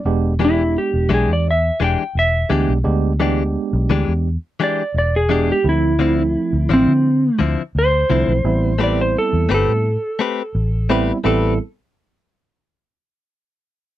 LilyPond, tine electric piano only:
\new Staff \with { instrumentName = "Tine electric piano" } { \time 4/4 \key a \minor \tempo 4 = 86 <gis b d' g'>8 <gis b d' g'>4. r4. <gis b d' g'>8 | <gis b d' g'>8 <gis b d' g'>4. r4. <gis b d' g'>8 | <f a c' e'>8 <f a c' e'>4. r4. <f a c' e'>8 | <g b c' e'>8 <g b c' e'>4. r4. <g b c' e'>8 |
<g b c' e'>8 r2. r8 | }